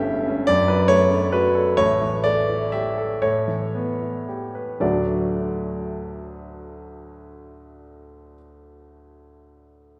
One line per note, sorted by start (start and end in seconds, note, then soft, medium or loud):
0.00 0.44 G1 medium
0.00 0.44 G2 medium
0.00 0.50 G3 medium
0.00 0.50 A3 medium
0.00 0.19 C#4 medium
0.00 0.50 G4 loud
0.00 0.47 E5 loud
0.07 0.40 E4 medium
0.28 0.48 C#4 medium
0.47 1.74 F#2 medium
0.47 0.68 D5 loud
0.68 1.02 F#3 medium
0.68 0.90 B4 medium
0.88 1.24 A3 medium
0.88 1.32 C#5 loud
1.11 1.46 D4 medium
1.32 1.69 F#4 medium
1.32 1.77 B4 medium
1.55 1.77 A4 medium
1.77 3.18 A1 medium
1.77 3.18 A2 medium
1.77 2.23 C#5 loud
2.02 2.38 E3 medium
2.24 2.63 A3 medium
2.24 2.72 D5 loud
2.49 2.88 E4 medium
2.72 3.13 G4 medium
2.72 3.22 E5 loud
2.98 3.22 A4 medium
3.22 4.78 A2 medium
3.22 4.81 C#5 medium
3.48 3.90 E3 soft
3.75 4.17 B3 medium
4.01 4.45 E4 soft
4.29 4.71 G4 medium
4.55 4.81 B4 medium
4.80 8.34 D2 medium
4.80 8.34 A2 medium
4.80 8.34 F#3 medium
4.80 8.35 A3 medium
4.80 8.35 D4 medium
4.80 8.35 F#4 medium
4.80 8.35 D5 medium